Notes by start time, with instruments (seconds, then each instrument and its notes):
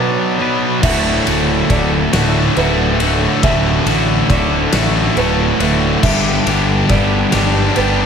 Already playing: distorted electric guitar B2 F#3 B3, clean electric guitar B2 F#3 D4 F#4, felt piano B4
0.39 distorted electric guitar B2 F#3 B3, clean electric guitar B4
0.82 fingered electric bass D1, distorted electric guitar D2 A2 D3 A3 F#4, felt piano E5, kick, crash
1.25 fingered electric bass D1, distorted electric guitar D3 A3 F#4, ride
1.68 fingered electric bass D1, distorted electric guitar A2 D3 A3 F#4, felt piano D5, kick, ride
2.12 fingered electric bass D1, overdriven electric guitar A2, distorted electric guitar D3 A3 F#4, snare, ride
2.17 overdriven electric guitar D2
2.56 fingered electric bass D1, distorted electric guitar A2 D3 A3 F#4, felt piano B4, ride
2.99 distorted electric guitar D3 A3 F#4, ride
3.43 fingered electric bass D1, distorted electric guitar D2 A2 D3 A3 F#4, felt piano E5, kick, ride
3.86 fingered electric bass A1, distorted electric guitar D3 A3 F#4, ride
4.29 fingered electric bass D1, distorted electric guitar A2 D3 A3 F#4, felt piano D5, kick, ride
4.73 fingered electric bass A1, distorted electric guitar D3 A3 F#4, snare, ride
4.77 overdriven electric guitar D2 A2
5.15 fingered electric bass D1, distorted electric guitar A2 D3 A3 F#4, felt piano B4, ride
5.59 fingered electric bass D1, distorted electric guitar D3 A3 F#4, ride
6.03 fingered electric bass G1, distorted electric guitar G2 D3 G3 B3 D4 G4, felt piano E5, kick, crash
6.45 fingered electric bass G1, distorted electric guitar G3 B3 D4 G4, ride
6.89 fingered electric bass G1, distorted electric guitar G3 B3 D4 G4, felt piano D5, kick, ride
7.32 fingered electric bass G1, distorted electric guitar G3 B3 D4 G4, snare, ride
7.36 overdriven electric guitar G2 D3
7.75 fingered electric bass G1, distorted electric guitar G3 B3 D4 G4, felt piano B4, ride